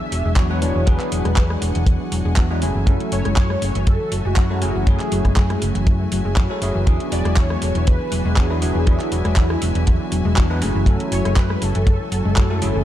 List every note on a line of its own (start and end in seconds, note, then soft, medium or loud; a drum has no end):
0.00 0.11 E3 medium
0.00 0.34 F#3 medium
0.00 0.34 B3 medium
0.00 0.34 D4 medium
0.00 2.58 D4 medium
0.00 0.34 E4 medium
0.00 12.84 F#4 medium
0.00 0.35 G#4 loud
0.00 0.39 E5 loud
0.00 0.83 E5 medium
0.00 2.58 G#5 medium
0.12 0.21 E1 medium
0.12 0.20 F#3 loud
0.12 open hi-hat loud
0.25 0.33 E1 medium
0.25 0.33 G#3 loud
0.36 0.47 F#3 medium
0.36 0.45 F#3 loud
0.36 0.47 B3 medium
0.36 0.47 D4 medium
0.36 0.47 E4 medium
0.36 0.47 F#4 medium
0.36 0.89 C#5 loud
0.36 kick loud
0.36 clap loud
0.36 closed hi-hat medium
0.50 0.59 F#3 loud
0.50 0.61 G#3 loud
0.50 0.59 B3 medium
0.50 0.59 D4 medium
0.50 0.59 E4 medium
0.50 0.59 B4 loud
0.62 0.71 E1 loud
0.62 0.67 D3 loud
0.62 0.84 F#3 medium
0.62 0.84 B3 medium
0.62 0.84 D4 medium
0.62 0.84 E4 medium
0.62 0.85 G#4 medium
0.62 open hi-hat loud
0.75 0.83 E1 loud
0.75 0.83 E3 loud
0.86 0.96 E2 medium
0.86 0.99 D3 loud
0.86 2.34 F#3 loud
0.86 2.34 B3 medium
0.86 2.34 D4 medium
0.86 2.34 E4 medium
0.86 2.35 G#4 loud
0.86 1.62 B4 medium
0.86 2.60 F#5 medium
0.86 kick loud
0.86 closed hi-hat medium
1.00 1.11 E3 medium
1.00 clap soft
1.00 closed hi-hat medium
1.12 1.21 E1 loud
1.12 1.20 F#3 loud
1.12 open hi-hat loud
1.25 1.33 E1 medium
1.25 1.32 G#3 loud
1.25 cross-stick medium
1.25 closed hi-hat soft
1.36 1.55 E2 medium
1.36 1.45 F#3 loud
1.36 kick loud
1.36 clap loud
1.36 closed hi-hat medium
1.50 1.61 G#3 loud
1.50 cross-stick medium
1.62 1.71 E1 loud
1.62 1.67 D3 loud
1.62 open hi-hat loud
1.75 1.83 E1 loud
1.75 1.83 E3 loud
1.75 closed hi-hat medium
1.87 1.96 E2 loud
1.87 1.99 D3 loud
1.87 kick loud
1.87 closed hi-hat medium
2.01 2.11 E3 medium
2.12 2.21 E1 medium
2.12 2.20 F#3 loud
2.12 open hi-hat loud
2.25 2.33 E1 medium
2.25 2.33 G#3 loud
2.36 2.63 E2 loud
2.36 2.47 F#3 medium
2.36 2.45 F#3 loud
2.36 2.47 B3 medium
2.36 2.47 D4 medium
2.36 2.47 E4 medium
2.36 2.47 F#4 loud
2.36 kick loud
2.36 clap loud
2.36 closed hi-hat medium
2.50 2.59 F#3 loud
2.50 2.61 G#3 loud
2.50 2.59 B3 medium
2.50 2.59 D4 medium
2.50 2.60 E4 medium
2.50 2.60 B4 loud
2.62 2.71 F#1 loud
2.62 2.67 C#3 loud
2.62 2.84 F#3 medium
2.62 2.84 A3 medium
2.62 6.83 A3 medium
2.62 2.84 C#4 medium
2.62 2.84 E4 medium
2.62 2.85 G#4 loud
2.62 12.84 E5 medium
2.62 12.84 G#5 medium
2.62 open hi-hat loud
2.75 2.83 F#1 loud
2.75 2.83 E3 loud
2.86 2.96 F#2 loud
2.86 2.99 C#3 loud
2.86 4.34 F#3 loud
2.86 4.34 A3 medium
2.86 4.34 C#4 medium
2.86 4.35 E4 medium
2.86 4.35 A4 loud
2.86 kick loud
2.86 closed hi-hat medium
3.00 3.11 E3 medium
3.00 closed hi-hat medium
3.12 3.21 F#1 medium
3.12 3.20 F#3 loud
3.12 3.35 C#5 loud
3.12 open hi-hat loud
3.25 3.33 F#1 loud
3.25 3.33 G#3 loud
3.25 cross-stick medium
3.25 closed hi-hat soft
3.36 3.55 F#2 medium
3.36 3.45 F#3 loud
3.36 3.88 C#5 loud
3.36 kick loud
3.36 clap loud
3.36 closed hi-hat medium
3.50 3.61 G#3 loud
3.50 cross-stick medium
3.62 3.71 F#1 loud
3.62 3.67 C#3 loud
3.62 open hi-hat loud
3.75 3.83 F#1 loud
3.75 3.83 E3 loud
3.75 closed hi-hat medium
3.87 3.96 F#2 loud
3.87 3.99 C#3 loud
3.87 4.27 A4 loud
3.87 kick loud
3.87 closed hi-hat medium
4.01 4.11 E3 medium
4.12 4.21 F#1 medium
4.12 4.20 F#3 loud
4.12 open hi-hat loud
4.25 4.33 F#1 medium
4.25 4.33 G#3 loud
4.25 4.61 F#4 loud
4.36 4.63 F#2 loud
4.36 4.47 F#3 medium
4.36 4.45 F#3 loud
4.36 4.47 A3 medium
4.36 4.47 C#4 medium
4.36 4.47 E4 medium
4.36 4.47 F#4 medium
4.36 kick loud
4.36 clap loud
4.36 closed hi-hat medium
4.50 4.59 F#3 loud
4.50 4.61 G#3 loud
4.50 4.59 A3 medium
4.50 4.59 C#4 medium
4.50 4.59 E4 medium
4.50 4.60 A4 loud
4.62 4.71 F#1 loud
4.62 4.67 C#3 loud
4.62 4.84 F#3 medium
4.62 4.84 A3 medium
4.62 4.84 C#4 medium
4.62 4.84 E4 medium
4.62 4.89 F#4 medium
4.62 4.85 G#4 loud
4.62 open hi-hat loud
4.75 4.83 F#1 loud
4.75 4.83 E3 loud
4.86 4.96 F#2 loud
4.86 4.99 C#3 loud
4.86 6.34 F#3 medium
4.86 6.34 A3 medium
4.86 6.34 C#4 medium
4.86 6.35 E4 medium
4.86 5.62 G#4 medium
4.86 6.35 G#4 loud
4.86 kick loud
4.86 closed hi-hat medium
5.00 5.11 E3 medium
5.00 clap soft
5.00 closed hi-hat medium
5.12 5.21 F#1 loud
5.12 5.20 F#3 loud
5.12 open hi-hat loud
5.25 5.33 F#1 loud
5.25 5.33 G#3 loud
5.25 kick medium
5.25 cross-stick medium
5.25 closed hi-hat soft
5.36 5.55 F#2 medium
5.36 5.45 F#3 medium
5.36 kick loud
5.36 clap loud
5.36 closed hi-hat medium
5.50 5.61 G#3 loud
5.50 cross-stick medium
5.50 closed hi-hat soft
5.62 5.71 F#1 loud
5.62 5.67 C#3 loud
5.62 open hi-hat loud
5.75 5.83 F#1 medium
5.75 5.83 E3 loud
5.75 closed hi-hat medium
5.87 6.05 F#2 loud
5.87 5.99 C#3 loud
5.87 kick loud
5.87 closed hi-hat medium
6.00 6.11 E3 medium
6.12 6.21 F#1 loud
6.12 6.20 F#3 loud
6.12 open hi-hat loud
6.25 6.38 F#1 medium
6.25 6.32 G#3 loud
6.36 6.46 F#2 loud
6.36 6.47 F#3 medium
6.36 6.45 F#3 loud
6.36 6.47 A3 medium
6.36 6.47 C#4 medium
6.36 6.47 E4 medium
6.36 6.47 F#4 loud
6.36 kick loud
6.36 clap loud
6.36 closed hi-hat medium
6.50 6.59 F#3 loud
6.50 6.61 G#3 loud
6.50 6.59 A3 medium
6.50 6.59 C#4 medium
6.50 6.59 E4 medium
6.50 6.59 A4 loud
6.62 6.71 F#1 medium
6.62 6.67 C#3 loud
6.62 6.84 F#3 medium
6.62 6.84 A3 medium
6.62 6.84 C#4 medium
6.62 6.84 E4 medium
6.62 6.85 G#4 loud
6.62 open hi-hat loud
6.75 6.83 F#1 medium
6.75 6.82 E3 loud
6.86 6.96 E2 loud
6.86 6.99 D3 loud
6.86 8.34 F#3 loud
6.86 8.34 B3 medium
6.86 10.58 D4 medium
6.86 8.34 D4 medium
6.86 8.34 E4 medium
6.86 8.35 G#4 loud
6.86 kick loud
6.86 closed hi-hat medium
7.00 7.11 E3 medium
7.00 closed hi-hat medium
7.12 7.21 E1 loud
7.12 7.20 F#3 loud
7.12 7.39 D5 loud
7.12 open hi-hat loud
7.25 7.33 E1 loud
7.25 7.32 G#3 loud
7.25 cross-stick medium
7.25 closed hi-hat soft
7.36 7.55 E2 medium
7.36 7.45 F#3 loud
7.36 7.89 C#5 loud
7.36 kick loud
7.36 clap loud
7.36 closed hi-hat medium
7.50 7.61 G#3 loud
7.50 cross-stick medium
7.62 7.71 E1 loud
7.62 7.67 D3 loud
7.62 open hi-hat loud
7.75 7.83 E1 loud
7.75 7.82 E3 loud
7.75 closed hi-hat medium
7.87 7.97 E2 loud
7.87 7.99 D3 loud
7.87 8.39 B4 loud
7.87 kick loud
7.87 closed hi-hat medium
8.00 8.11 E3 medium
8.12 8.21 E1 medium
8.12 8.20 F#3 loud
8.12 open hi-hat loud
8.25 8.33 E1 medium
8.25 8.33 G#3 loud
8.36 8.47 F#3 medium
8.36 8.45 F#3 loud
8.36 8.47 B3 medium
8.36 8.47 D4 medium
8.36 8.47 E4 medium
8.36 8.47 F#4 medium
8.36 8.89 G#4 loud
8.36 kick loud
8.36 clap loud
8.36 closed hi-hat medium
8.50 8.59 F#3 medium
8.50 8.61 G#3 loud
8.50 8.59 B3 medium
8.50 8.59 D4 medium
8.50 8.59 E4 medium
8.50 8.59 B4 loud
8.62 8.71 E1 loud
8.62 8.67 D3 loud
8.62 8.84 F#3 medium
8.62 8.84 B3 medium
8.62 8.84 D4 medium
8.62 8.84 E4 medium
8.62 8.84 G#4 loud
8.62 open hi-hat loud
8.75 8.83 E1 loud
8.75 8.82 E3 loud
8.86 8.96 E2 loud
8.86 8.99 D3 loud
8.86 10.34 F#3 medium
8.86 10.34 B3 medium
8.86 10.34 D4 medium
8.86 10.34 E4 medium
8.86 10.37 E4 medium
8.86 10.35 G#4 loud
8.86 kick loud
8.86 closed hi-hat medium
9.00 9.11 E3 medium
9.00 clap soft
9.00 closed hi-hat medium
9.12 9.21 E1 loud
9.12 9.20 F#3 loud
9.12 open hi-hat loud
9.25 9.33 E1 loud
9.25 9.32 G#3 loud
9.25 cross-stick medium
9.25 closed hi-hat soft
9.36 9.55 E2 loud
9.36 9.45 F#3 loud
9.36 kick loud
9.36 clap loud
9.36 closed hi-hat medium
9.50 9.61 G#3 loud
9.50 cross-stick medium
9.62 9.71 E1 loud
9.62 9.67 D3 loud
9.62 open hi-hat loud
9.75 9.83 E1 loud
9.75 9.83 E3 loud
9.75 closed hi-hat medium
9.87 9.97 E2 loud
9.87 9.99 D3 loud
9.87 kick loud
9.87 closed hi-hat medium
10.00 10.11 E3 medium
10.12 10.21 E1 medium
10.12 10.20 F#3 loud
10.12 open hi-hat loud
10.25 10.33 E1 loud
10.25 10.33 G#3 loud
10.36 10.63 E2 loud
10.36 10.47 F#3 medium
10.36 10.45 F#3 loud
10.36 10.47 B3 medium
10.36 10.47 D4 medium
10.36 10.47 E4 medium
10.36 10.47 F#4 loud
10.36 kick loud
10.36 clap loud
10.36 closed hi-hat medium
10.50 10.59 F#3 loud
10.50 10.61 G#3 loud
10.50 10.59 B3 medium
10.50 10.59 D4 medium
10.50 10.59 E4 medium
10.50 10.59 B4 loud
10.61 10.71 F#1 loud
10.61 10.67 C#3 loud
10.61 10.84 F#3 medium
10.61 10.84 A3 medium
10.61 12.84 A3 medium
10.61 10.84 C#4 medium
10.61 10.84 E4 medium
10.61 10.84 G#4 loud
10.61 open hi-hat loud
10.75 10.83 F#1 loud
10.75 10.83 E3 loud
10.86 10.96 F#2 loud
10.86 10.99 C#3 loud
10.86 12.34 F#3 loud
10.86 12.34 A3 medium
10.86 12.34 C#4 medium
10.86 12.34 E4 medium
10.86 12.35 A4 loud
10.86 kick loud
10.86 closed hi-hat medium
11.00 11.11 E3 medium
11.00 closed hi-hat medium
11.12 11.21 F#1 loud
11.12 11.20 F#3 loud
11.12 11.39 C#5 loud
11.12 open hi-hat loud
11.25 11.33 F#1 medium
11.25 11.33 G#3 loud
11.25 cross-stick medium
11.25 closed hi-hat soft
11.36 11.55 F#2 medium
11.36 11.45 F#3 loud
11.36 11.64 B4 loud
11.36 kick loud
11.36 clap loud
11.36 closed hi-hat medium
11.50 11.61 G#3 loud
11.50 cross-stick medium
11.62 11.71 F#1 loud
11.62 11.67 C#3 loud
11.62 12.84 A4 loud
11.62 open hi-hat loud
11.75 11.83 F#1 loud
11.75 11.83 E3 loud
11.75 closed hi-hat medium
11.87 11.96 F#2 loud
11.87 11.99 C#3 loud
11.87 kick loud
11.87 closed hi-hat medium
12.00 12.11 E3 medium
12.12 12.21 F#1 medium
12.12 12.20 F#3 loud
12.12 open hi-hat loud
12.25 12.33 F#1 medium
12.25 12.32 G#3 loud
12.36 12.63 F#2 loud
12.36 12.47 F#3 medium
12.36 12.45 F#3 loud
12.36 12.47 A3 medium
12.36 12.47 C#4 medium
12.36 12.47 E4 medium
12.36 12.47 F#4 loud
12.36 kick loud
12.36 clap loud
12.36 closed hi-hat medium
12.50 12.59 F#3 loud
12.50 12.61 G#3 loud
12.50 12.59 A3 medium
12.50 12.59 C#4 medium
12.50 12.59 E4 medium
12.50 12.59 A4 loud
12.61 12.71 F#1 loud
12.61 12.67 C#3 loud
12.61 12.84 F#3 medium
12.61 12.84 A3 medium
12.61 12.84 C#4 medium
12.61 12.84 E4 medium
12.61 12.84 G#4 loud
12.61 open hi-hat loud
12.75 12.83 F#1 loud
12.75 12.82 E3 loud